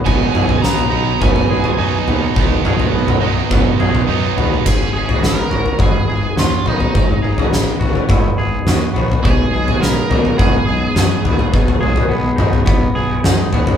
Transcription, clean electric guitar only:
X:1
M:4/4
L:1/8
Q:1/4=105
K:G#m
V:1 name="Clean electric guitar"
B,, G B, D B, G D B, | B,, G B, D B, G D B, | G,, G B, F B, G F B, | G,, G B, F B, G F B, |
B,, G B, D B, G D B, | B,, G B, D B, G D B, |]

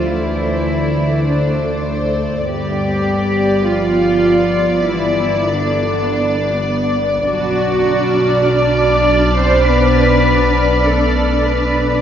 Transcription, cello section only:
X:1
M:4/4
L:1/8
Q:1/4=100
K:Gmix
V:1 name="Cello section"
E4 D2 z2 | G4 F4 | E2 D4- D z | ^F4 d3 c |
B4 A2 B2 |]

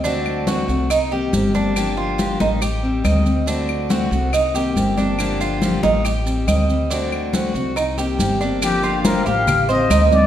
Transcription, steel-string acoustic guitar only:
X:1
M:4/4
L:1/8
Q:1/4=140
K:Gm
V:1 name="Steel-string acoustic guitar"
[D,A,C^F]2 [D,A,CF] [A,CF] z [E,B,CG] [E,B,CG] [B,CG] | [D,F,B,DG]2 [D,F,B,DG] [B,DG] z [G,C] [E,G,C] [G,C] | [D,A,C^F]2 [D,A,CF] [A,CF] z [E,B,CG] [E,B,CG] [B,CG] | [D,F,B,DG]2 [D,F,B,DG] [B,DG] z [G,C] [E,G,C] [G,C] |
[D,A,C^F]2 [D,A,CF] [A,CF] z [E,B,CG] [E,B,CG] [B,CG] | [D,F,B,DG]2 [D,F,B,DG] [B,DG] z [G,C] [E,G,C] [G,C] |]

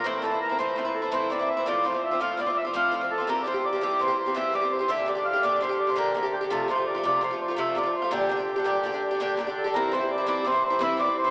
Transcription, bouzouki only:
X:1
M:9/8
L:1/16
Q:3/8=111
K:Cmix
V:1 name="Bouzouki"
[A,,E,CE]2 [A,,E,CE] [E,CE]2 [E,CE] [A,,E,CE]2 [A,,E,CE] [E,CE]2 [E,CE] [A,,E,CE]2 [A,,E,CE] [E,CE]2 [E,CE] | [A,,F,CF]2 [A,,F,CF] [F,CF]2 [F,CF] [A,,F,CF]2 [A,,F,CF] [F,CF]2 [F,CF] [A,,F,CF]2 [A,,F,CF] [F,CF]2 [F,CF] | [G,,E,CG]2 [G,,E,CG] [E,CG]2 [E,CG] [G,,E,CG]2 [G,,E,CG] [E,CG]2 [E,CG] [G,,E,CG]2 [G,,E,CG] [E,CG]2 [E,CG] | [B,,D,DG]2 [B,,D,DG] [D,DG]2 [D,DG] [B,,D,DG]2 [B,,D,DG] [D,DG]2 [D,DG] [B,,D,DG]2 [B,,D,DG] [D,DG]2 [D,DG] |
[C,F,A,F]2 [C,F,A,F] [F,A,F]2 [F,A,F] [C,F,A,F]2 [C,F,A,F] [F,A,F]2 [F,A,F] [C,F,A,F]2 [C,F,A,F] [F,A,F]2 [F,A,F] | [B,,D,DG]2 [B,,D,DG] [D,DG]2 [D,DG] [B,,D,DG]2 [B,,D,DG] [D,DG]2 [D,DG] [B,,D,DG]2 [B,,D,DG] [D,DG]2 [D,DG] | [G,,E,CE]2 [G,,E,CE] [E,CE]2 [E,CE] [G,,E,CE]2 [G,,E,CE] [E,CE]2 [E,CE] [G,,E,CE]2 [G,,E,CE] [E,CE]2 [CE] |]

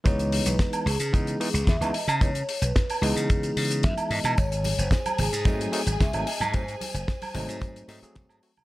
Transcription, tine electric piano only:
X:1
M:4/4
L:1/16
Q:1/4=111
K:C#m
V:1 name="Tine electric piano"
[E,G,B,D]6 z2 [E,G,B,D]2 [E,G,B,D] z2 [E,G,B,D] z2 | [E,G,B,D] z4 z [E,G,B,D]8- [E,G,B,D]2 | z8 [F,A,^B,D]2 [F,A,B,D] z2 [F,A,B,D] z2 | [F,A,^B,D] z4 z [F,A,B,D]4 [F,A,B,D] [F,A,B,G]3 [F,A,B,F] z |]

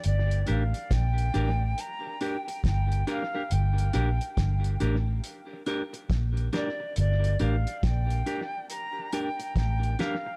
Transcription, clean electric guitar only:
X:1
M:4/4
L:1/16
Q:"Swing 16ths" 1/4=69
K:Gm
V:1 name="Clean electric guitar"
z2 [DGB] z3 [DGB] z3 [DGB] z3 [DGB] [DGB] | z2 [DGB] z3 [DGB] z3 [DGB] z3 [DGB] z | z2 [DGB] z3 [DGB] z3 [DGB] z3 [DGB] z |]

